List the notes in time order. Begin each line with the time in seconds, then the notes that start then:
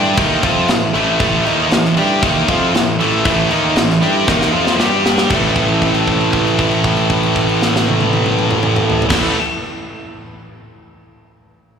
Already playing: G2 G3 D4 G4 A4 E5 C6
0.17 D#2 D#3 A#3 D#4, kick, crash
0.42 F2 F3 C4 F4, kick, crash
0.67 A1 A2 E3, snare, crash
0.93 A1 A2 E3 A3, crash
1.20 A1 A2 E3 A3, kick, crash
1.45 D#2 D#3 A#3 D#4, crash
1.71 A1 A2 E3, snare, crash
1.85 snare
1.97 G2 G3 D4 G4, crash
2.22 D#2 D#3 A#3 D#4, kick, crash
2.48 F2 F3 C4 F4, kick, crash
2.74 A1 A2 E3, snare, crash
2.99 A1 A2 E3 A3, crash
3.24 A1 A2 E3 A3, kick, crash
3.50 D#2 D#3 A#3 D#4, crash
3.75 A1 A2 E3, snare, crash
3.91 snare
4.02 G2 G3 D4 G4, crash
4.27 D#2 D#3 A#3 D#4, kick, snare
4.42 snare
4.53 F2 F3 C4 F4
4.67 snare
4.78 G2 G3 D4 G4 D5 D6, snare
5.06 snare
5.18 snare
5.29 A1 A2 E3 A3 C4 E4 A4, kick, crash
5.34 A3 E4 B4
5.55 kick, crash
5.68 crash
5.82 kick, crash
5.94 crash
6.07 kick, crash
6.21 crash
6.33 kick, crash
6.47 crash
6.58 kick, crash
6.71 crash
6.84 kick, crash
6.97 crash
7.10 kick, crash
7.23 crash
7.36 kick, crash
7.49 crash
7.62 snare
7.76 snare
7.89 high tom
8.01 high tom
8.13 high tom
8.26 mid tom
8.39 mid tom
8.51 mid tom
8.63 mid tom
8.76 mid tom
8.90 floor tom
9.02 floor tom
9.10 A1 A2 E3 A3 C4 E4 A4 B4, kick, snare, crash